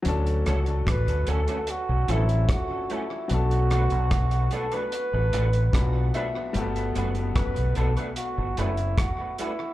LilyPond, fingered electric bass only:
\new Staff \with { instrumentName = "Fingered electric bass" } { \clef bass \time 4/4 \key d \major \tempo 4 = 74 d,8 cis,8 a,,16 d,16 d,16 r8 b,,16 a,,8 r4 | b,,8. b,,8. r8. a,,16 a,,8 b,,8 r8 | g,,8 fis,,8 fis,,16 b,,16 b,,16 r8 g,,16 fis,,8 r4 | }